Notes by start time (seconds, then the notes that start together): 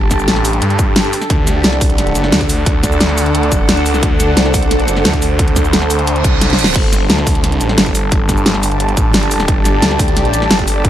Already playing: G1 G3 D4 G4 A4 A5
0.11 kick, snare, closed hi-hat, shaker
0.19 shaker
0.28 A1, snare, closed hi-hat
0.36 snare
0.45 open hi-hat, shaker
0.53 closed hi-hat
0.62 G2, closed hi-hat
0.70 closed hi-hat
0.79 kick, closed hi-hat, shaker
0.96 snare, closed hi-hat, shaker
1.04 closed hi-hat
1.13 open hi-hat, shaker
1.22 snare, shaker
1.30 D2 D4 D5 F#5, kick, closed hi-hat
1.39 A4 D5
1.47 snare, closed hi-hat, shaker
1.64 C2, snare, closed hi-hat
1.73 snare
1.81 kick, open hi-hat, shaker
1.90 closed hi-hat
1.98 snare, closed hi-hat
2.07 closed hi-hat
2.15 F#1, closed hi-hat, shaker
2.24 snare
2.32 D2, snare, closed hi-hat, shaker
2.41 kick, closed hi-hat
2.49 open hi-hat, shaker
2.66 D2, kick, closed hi-hat
2.83 kick, snare, closed hi-hat, shaker
2.92 shaker
3.01 D2, snare, closed hi-hat
3.09 snare
3.18 open hi-hat, shaker
3.26 closed hi-hat
3.35 closed hi-hat
3.43 closed hi-hat
3.52 F#1, kick, closed hi-hat, shaker
3.69 D2, snare, closed hi-hat, shaker
3.77 closed hi-hat
3.86 open hi-hat, shaker
3.93 C5, snare, shaker
4.03 D2 C5, kick, closed hi-hat
4.20 snare, closed hi-hat, shaker
4.37 C2, snare, closed hi-hat
4.46 snare
4.54 kick, open hi-hat, shaker
4.63 closed hi-hat
4.71 snare, closed hi-hat
4.79 closed hi-hat
4.88 F#1, closed hi-hat, shaker
4.97 snare
5.05 D2, snare, closed hi-hat, shaker
5.14 kick, closed hi-hat
5.22 open hi-hat, shaker
5.39 D2, kick, closed hi-hat
5.48 closed hi-hat
5.56 kick, snare, closed hi-hat, shaker
5.65 shaker
5.73 D2, snare, closed hi-hat
5.82 snare
5.90 open hi-hat, shaker
5.99 closed hi-hat
6.07 closed hi-hat, reverse cymbal
6.16 closed hi-hat
6.24 C2, kick, closed hi-hat, shaker
6.41 snare, closed hi-hat, shaker
6.50 snare, closed hi-hat
6.59 open hi-hat, shaker
6.64 snare, shaker
6.76 G1 G3 D4 G4 A4 A5, kick, closed hi-hat, crash
6.93 snare, closed hi-hat, shaker
7.03 D5 A5
7.10 D2, snare, closed hi-hat
7.18 snare
7.27 kick, open hi-hat, shaker
7.35 closed hi-hat
7.44 snare, closed hi-hat
7.52 closed hi-hat
7.61 A1, closed hi-hat, shaker
7.69 snare
7.78 G1, snare, closed hi-hat, shaker
7.86 kick, closed hi-hat
7.95 open hi-hat, shaker
8.12 G1, kick, closed hi-hat
8.29 kick, snare, closed hi-hat, shaker
8.37 shaker
8.46 G1, snare, closed hi-hat
8.54 snare
8.63 open hi-hat, shaker
8.72 closed hi-hat
8.80 closed hi-hat
8.89 closed hi-hat
8.97 A1, kick, closed hi-hat, shaker
9.14 G1, snare, closed hi-hat, shaker
9.23 closed hi-hat
9.31 open hi-hat, shaker
9.40 snare, shaker
9.48 G1, kick, closed hi-hat
9.65 snare, closed hi-hat, shaker
9.82 D2, snare, closed hi-hat
9.91 snare
9.99 kick, open hi-hat, shaker
10.08 closed hi-hat
10.17 snare, closed hi-hat
10.25 closed hi-hat
10.34 A1, closed hi-hat, shaker
10.42 snare
10.51 G1, snare, closed hi-hat, shaker
10.59 kick, closed hi-hat
10.68 open hi-hat, shaker
10.85 G1, kick, closed hi-hat